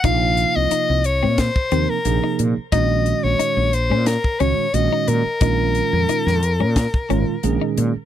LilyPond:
<<
  \new Staff \with { instrumentName = "Soprano saxophone" } { \time 4/4 \key bes \minor \tempo 4 = 89 f''8. ees''8. des''8 c''8. bes'8. r8 | ees''8. des''8. c''8 bes'8 des''8 ees''8 bes'8~ | bes'2.~ bes'8 r8 | }
  \new Staff \with { instrumentName = "Clean electric guitar" } { \time 4/4 \key bes \minor ees'8 r8 ees'8 r16 c'8 r16 c'8 r16 ees'8 r16 | ees'8 r8 ees'8 r16 des'8 r16 des'8 r16 ees'8 r16 | ees'8 r8 ees'8 r16 des'8 r16 des'8 r16 ees'8 r16 | }
  \new Staff \with { instrumentName = "Tine electric piano" } { \clef bass \time 4/4 \key bes \minor <c f bes ees' f'>4. r4 <c f bes ees' bes'>8 <c f bes ees' aes'>8 r8 | <bes, ees aes des' ges'>4. r4 <bes, ees aes des' ges'>8 <bes, ees aes des' ges'>8 r8 | <bes, ees aes des' f'>4. r4 <bes, ees aes des' f'>8 <bes, ees aes des' aes'>8 r8 | }
  \new Staff \with { instrumentName = "Fretless electric bass" } { \clef bass \time 4/4 \key bes \minor bes,,8. c,16 r16 c,8 bes,8 r16 ees,16 r16 bes,,16 r16 bes,16 r16 | bes,,8. bes,,16 r16 bes,,8 bes,8 r16 des,16 r16 bes,,16 r16 bes,16 r16 | bes,,8. f,16 r16 f,8 bes,8 r16 aes,,16 r16 bes,,16 r16 bes,16 r16 | }
  \new DrumStaff \with { instrumentName = "Drums" } \drummode { \time 4/4 <hh bd>8 hh8 hh8 hh8 <hh bd sn>16 bd16 hh8 hh8 hh8 | <hh bd>8 hh8 hh8 hh8 <hh sn>16 bd16 hh8 hh8 hh8 | <hh bd>8 hh8 hh16 sn16 hh8 <hh bd sn>16 bd16 hh8 hh8 hh8 | }
>>